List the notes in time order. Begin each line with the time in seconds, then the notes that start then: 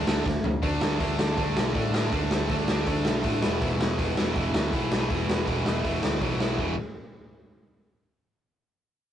0.07 D2 D3 A3 D4, snare
0.25 D2 D3 A3, kick, snare
0.44 F#2 D3 A3, floor tom
0.62 D2 D3 A3 D4, kick, open hi-hat
0.81 D2, snare
1.00 D2 D3 A3 D4, kick, open hi-hat
1.18 D2 D3 A3 D4, snare
1.37 D2 D3 A3 D4, kick, open hi-hat
1.57 B1, snare
1.75 A2 D3 A3 D4, kick, open hi-hat
1.94 D3 A3 D4, snare
2.12 D2 D3 A3 D4, kick, open hi-hat
2.31 D2, snare
2.49 D2 D3 A3 D4, kick, open hi-hat
2.68 D2 D3 A3 D4, snare
2.86 D2 D3 A3 D4, kick, open hi-hat
3.05 B1, snare
3.23 A2 D3 A3 D4, kick, open hi-hat
3.42 E1 E2 B2 E3, snare
3.60 E1 E2 B2 E3, kick, open hi-hat
3.80 E1, snare
3.98 E1 E2 B2 E3, kick, open hi-hat
4.17 E1 E2 B2 E3, snare
4.35 E1 E2 B2 E3, kick, open hi-hat
4.54 D2, snare
4.72 B1 E2 B2 E3, kick, open hi-hat
4.92 E2 B2 E3, snare
5.10 E1 E2 B2 E3, kick, open hi-hat
5.27 E1, snare
5.47 E1 E2 B2 E3, kick, open hi-hat
5.65 E1 E2 B2 E3, snare
5.84 E1 E2 B2 E3, kick, open hi-hat
6.02 D2, snare
6.21 B1 E2 B2 E3, kick, open hi-hat
6.40 E2 B2 E3, snare
6.58 E1 E2 B2 E3, kick